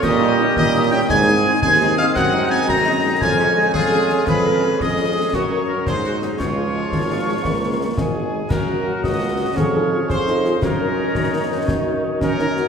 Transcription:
0.02 tuba A#2, trombone section G3 C#4, woodwind section G4, trumpet section D#5, piccolo D#6, concert bass drum, snare, crash
0.22 french horn section G3 C#4 D#4
0.40 french horn section G3 C#4 D#4
0.56 tuba A#2, trumpet section D#5, piccolo D#6, concert bass drum, snare
0.74 french horn section G3 C#4 D#4
0.91 french horn section G3 C#4 D#4, trumpet section G5, piccolo G6
1.09 tuba G#2, trombone section G#3 C4, woodwind section G#4, trumpet section G#5, piccolo G#6, concert bass drum, snare
1.28 french horn section G#3 C4 D#4
1.45 french horn section G#3 C4 D#4
1.61 tuba D#2, trumpet section G#5, piccolo G#6, concert bass drum, snare
1.81 french horn section G#3 C4 D#4, snare
1.97 french horn section G#3 C4 D#4, trumpet section F5, piccolo F6, snare
2.15 tuba F#2, woodwind section D#4, trumpet section F#5, piccolo F#6, concert bass drum, snare, crash
2.34 french horn section G#3 C4 D#4
2.50 french horn section G#3 C4 D#4, trumpet section G#5, piccolo G#6
2.68 tuba F#2, trumpet section A#5, piccolo A#6, concert bass drum, snare
2.86 french horn section G#3 C4 D#4
3.04 french horn section G#3 C4 D#4
3.20 tuba F2, trombone section G#3 C#4, woodwind section F4, trumpet section G#5, piccolo G#6, concert bass drum, snare
3.39 french horn section G#3 C#4 G#4, woodwind section C#4
3.56 french horn section G#3 C#4 G#4, woodwind section D#4
3.74 tuba F2, woodwind section F4, trumpet section G#4, piccolo G#5, concert bass drum, snare
3.92 french horn section G#3 C#4 G#4, snare
4.10 french horn section G#3 C#4 G#4, snare
4.27 tuba F2, woodwind section G#4, trumpet section B4, piccolo B5, concert bass drum, snare, crash
4.45 french horn section G#3 C#4 G#4, woodwind section A#4
4.63 french horn section G#3 C#4 G#4, woodwind section G#4
4.79 tuba F2, trumpet section D#5, piccolo D#6, concert bass drum, snare
4.99 french horn section G#3 C#4 G#4
5.16 french horn section G#3 C#4 G#4
5.33 tuba F#2, trombone section F#3 A#3, woodwind section F#4, trumpet section C#5, piccolo C#6, concert bass drum, snare
5.51 french horn section F#3 C#4 A#4, woodwind section G#4
5.68 french horn section F#3 C#4 A#4, woodwind section A#4
5.85 tuba G#2, trombone section G#3, woodwind section G#4, trumpet section C5, piccolo C6, concert bass drum, snare
6.03 french horn section F#3 G#3 G#4, woodwind section F#4, snare
6.22 french horn section F#3 G#3 G#4, woodwind section D#4, snare
6.37 tuba C#2, trombone section F3 G#3, woodwind section F4, trumpet section C#5, piccolo C#6, concert bass drum, snare, crash
6.57 french horn section F3 G#3 G#4
6.74 french horn section F3 G#3 G#4
6.92 tuba G#1, euphonium F3, concert bass drum, snare
7.09 french horn section F3 G#3 G#4
7.27 french horn section F3 G#3 G#4
7.44 tuba C#2, euphonium A#3, concert bass drum, snare
7.62 french horn section F3 G#3 G#4
7.80 french horn section F3 G#3 G#4
7.97 tuba G#1, euphonium G#3, trumpet section G#4, piccolo G#5, concert bass drum, snare
8.15 french horn section F3 G#3 G#4
8.34 french horn section F3 G#3 G#4
8.49 tuba F#2, trombone section F#3 C#4, woodwind section F#4 F#5, trumpet section A#4, piccolo A#5, concert bass drum, snare, crash
8.69 french horn section F#3 A#3 F#4
8.86 french horn section F#3 A#3 F#4
9.03 tuba C#2, euphonium F#4, trumpet section D#5, piccolo D#6, concert bass drum, snare
9.21 french horn section F#3 A#3 F#4
9.39 french horn section F#3 A#3 F#4
9.55 tuba F2, trombone section F3, woodwind section G#4 F5, euphonium G#4, trumpet section C#5, piccolo C#6, concert bass drum, snare
9.75 french horn section C#4 F4 G#4, euphonium D#4
9.91 french horn section C#4 F4 G#4, euphonium F4
10.08 tuba F2, euphonium G#4, trumpet section C5, piccolo C6, concert bass drum, snare
10.27 french horn section C#4 F4 G#4, euphonium D#4, woodwind section D#5, snare
10.45 french horn section C#4 F4 G#4, euphonium F4, snare
10.62 tuba F#2, trombone section D#3 C#4, euphonium C#4, woodwind section D#4 C#5, trumpet section A#4, piccolo A#5, concert bass drum, snare, crash
10.81 french horn section C#4 D#4 A#4
10.98 french horn section C#4 D#4 A#4
11.15 tuba F#2, euphonium D#4, concert bass drum, snare
11.34 french horn section C#4 D#4 A#4
11.51 french horn section C#4 D#4 A#4
11.68 tuba F#2, concert bass drum, snare
11.86 french horn section C#4 D#4 A#4
12.04 french horn section C#4 D#4 A#4
12.20 tuba F#2, euphonium C#4, woodwind section D#4 C#5, trumpet section A#4, piccolo A#5, concert bass drum, snare
12.39 french horn section C#4 D#4 A#4, euphonium D#4, snare
12.56 french horn section C#4 D#4 A#4, euphonium F#4, snare

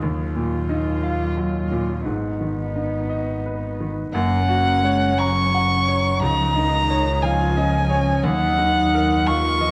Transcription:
0.02 double bass D#2, grand piano D#2, cello F#3, violin F4
0.36 grand piano A#2
0.69 grand piano D#4
1.03 grand piano F5
1.37 grand piano F#3
1.72 grand piano A#2
2.06 double bass G#1, grand piano G#2, cello B3, violin D#4
2.41 grand piano D#3
2.76 grand piano D#4
3.10 grand piano D#5
3.46 grand piano B4
3.80 grand piano D#3
4.13 double bass F#1, grand piano F#2, cello A#3, viola C#4, violin F#5
4.48 cello A#3, grand piano F#4
4.83 cello G#3, grand piano C#5
5.18 cello F#3, grand piano A#5, violin C#6
5.55 grand piano F#5
5.88 grand piano C#5
6.21 double bass C#2, grand piano C#2, cello F3, viola D#4, violin A#5
6.55 cello D#3, grand piano D#4
6.90 cello D#3, grand piano C#5
7.22 cello F3, viola F4, grand piano F5, violin G#5
7.57 viola C#4, grand piano D#5
7.90 viola C#4, grand piano C#5
8.24 grand piano D#2, double bass D#2, cello F#3, viola D#4, violin F#5
8.58 grand piano D#4
8.94 grand piano A#4
9.27 cello D#3, viola F4, grand piano F5, violin C#6
9.61 cello F3, grand piano D#5

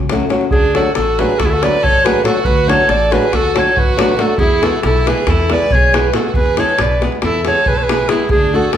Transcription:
Already playing: upright bass C#2
0.09 nylon-string guitar F#3 A3 C#4 F#4, davul high
0.20 davul high
0.29 nylon-string guitar F#3 A3 C#4 F#4, davul high
0.41 davul high
0.51 upright bass D2, violin D4, clarinet G#4, davul low
0.75 nylon-string guitar F#3 A3 D4 F#4, violin F#4, clarinet A4, davul high
0.95 upright bass A1, violin F#4, clarinet A4, davul high
1.18 nylon-string guitar F#3 A3 D4 F#4, violin G#4, clarinet B4, davul high
1.29 davul high
1.39 upright bass D2, violin F#4, clarinet A4, davul high, davul low
1.45 violin E4, clarinet G#4
1.50 violin F#4, clarinet A4, davul high
1.63 nylon-string guitar F#3 A3 D4 F#4, violin B4, clarinet D5, davul high
1.83 upright bass A1, violin A4, clarinet C#5, davul low
2.04 nylon-string guitar F#3 A3 D4 F#4, violin G#4, clarinet B4, davul high
2.16 davul high
2.24 nylon-string guitar F#3 A3 D4 F#4, violin F#4, clarinet A4, davul high
2.45 upright bass D2, violin F#4, clarinet B4, davul low
2.67 nylon-string guitar F#3 A3 D4 F#4, clarinet C#5, davul high
2.71 violin A4
2.89 upright bass A1, violin A4, clarinet D5, davul high
3.10 nylon-string guitar F#3 A3 D4 F#4, violin G#4, clarinet B4, davul high
3.22 davul high
3.32 upright bass D2, violin F#4, clarinet A4, davul high, davul low
3.45 davul high
3.54 nylon-string guitar F#3 A3 D4 F#4, violin A4, davul high
3.58 clarinet C#5
3.77 upright bass A1, violin F#4, clarinet B4, davul low
3.97 nylon-string guitar F#3 A3 D4 F#4, davul high
4.09 davul high
4.16 nylon-string guitar F#3 A3 D4 F#4, davul high
4.21 violin F#4, clarinet A4
4.38 upright bass E2, violin E4, clarinet G#4, davul low
4.62 nylon-string guitar G#3 B3 E4 G#4, violin F#4, clarinet A4, davul high
4.83 upright bass B1, violin E4, clarinet A4, davul high
5.06 nylon-string guitar G#3 B3 E4 G#4, violin G#4, clarinet B4, davul high
5.18 davul high
5.27 upright bass E2, violin E4, clarinet A4, davul high, davul low
5.39 davul high
5.49 nylon-string guitar G#3 B3 E4 G#4, clarinet D5, davul high
5.53 violin B4
5.71 upright bass B1, clarinet C#5, davul low
5.75 violin G#4
5.93 nylon-string guitar G#3 B3 E4 G#4, violin G#4, clarinet B4, davul high
6.04 davul high
6.13 nylon-string guitar G#3 B3 E4 G#4, violin F#4, clarinet A4, davul high
6.34 upright bass E2, violin G#4, clarinet B4, davul low
6.46 davul high
6.57 nylon-string guitar G#3 B3 E4 G#4, violin A4, clarinet C#5, davul high
6.79 upright bass B1, violin B4, clarinet D5, davul high
7.01 nylon-string guitar G#3 B3 E4 G#4, davul high
7.12 davul high
7.22 upright bass E2, violin E4, clarinet A4, davul high
7.34 davul high
7.45 nylon-string guitar G#3 B3 E4 G#4, violin A4, clarinet C#5, davul high
7.55 davul high
7.66 upright bass B1, violin G#4, clarinet B4, davul low
7.74 violin A4, clarinet C#5
7.79 clarinet B4, davul high
7.84 violin G#4
7.89 nylon-string guitar G#3 B3 E4 G#4, davul high
8.09 nylon-string guitar G#3 B3 E4 G#4, violin E4, clarinet G#4, davul high
8.20 davul high
8.29 upright bass D2, clarinet G#4, davul low
8.33 violin D4
8.53 nylon-string guitar A3 D4 F#4 A4, violin F#4, clarinet A4
8.73 clarinet A4, davul high

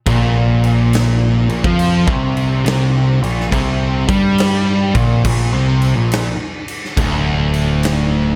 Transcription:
0.06 picked electric bass A#1, distorted electric guitar A#2, kick, crash
0.64 crash
0.93 snare, crash
1.49 picked electric bass A#1, distorted electric guitar A#2, crash
1.64 picked electric bass F2, distorted electric guitar F3, kick
1.79 crash
2.07 picked electric bass C2, distorted electric guitar C3, kick
2.37 crash
2.65 picked electric bass C2, distorted electric guitar C3, snare, crash
3.22 picked electric bass A#1, distorted electric guitar A#2, crash
3.40 snare
3.52 picked electric bass C2, distorted electric guitar C3, kick, crash
4.08 picked electric bass G2, distorted electric guitar G3, kick, crash
4.38 snare, crash
4.95 picked electric bass A#1, distorted electric guitar A#2, kick, crash
5.25 picked electric bass A#1, distorted electric guitar A#2, kick, crash
5.52 picked electric bass C2, distorted electric guitar C3
5.82 crash
5.96 picked electric bass A#1, distorted electric guitar A#2
6.12 snare, crash
6.68 crash
6.85 snare
6.97 picked electric bass D1, distorted electric guitar D2, kick, crash
7.54 crash
7.83 snare, crash

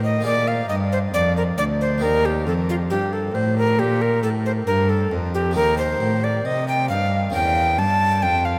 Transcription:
Already playing: harpsichord A2 D#4 G4, cello A2
0.04 recorder D#5
0.21 harpsichord A#3 F4 G#4
0.25 harpsichord A#2, cello A#2, recorder D5
0.48 recorder F5
0.69 cello G2, harpsichord G2, recorder D#5
0.92 recorder C5
1.14 harpsichord F2, cello F2, recorder D5
1.37 recorder A#4
1.58 cello D2, harpsichord D2, recorder D5
1.81 recorder C5
1.98 harpsichord A#3 D#4 G4
2.02 cello D#2, harpsichord D#2, recorder A#4
2.25 recorder G4
2.46 cello F2, harpsichord F2, recorder A4
2.69 recorder F4
2.90 cello G2, harpsichord G2, recorder G4
3.13 recorder A4
3.34 cello A2, harpsichord A2, recorder C5
3.58 recorder A#4
3.79 harpsichord A#2, cello A#2, recorder G4
4.01 recorder A#4
4.23 cello A2, harpsichord A2, recorder A4
4.46 recorder C5
4.67 harpsichord G2, cello G2, recorder A#4
4.89 recorder A4
5.12 harpsichord F2, cello F2
5.34 recorder G4
5.51 harpsichord A#3 D#4 G4
5.56 cello D#2, harpsichord D#2, recorder A#4
5.78 recorder C5
6.00 harpsichord A2, cello A2
6.24 recorder D5
6.45 cello C3, harpsichord C3, recorder D#5
6.68 recorder G5
6.89 cello G2, harpsichord G2, recorder F5
7.30 harpsichord A#3 C#4 A#4, recorder G5
7.34 cello E2, harpsichord E2
7.78 cello G2, harpsichord G2, recorder A5
8.22 cello F2, harpsichord F2, recorder G5
8.45 recorder F5

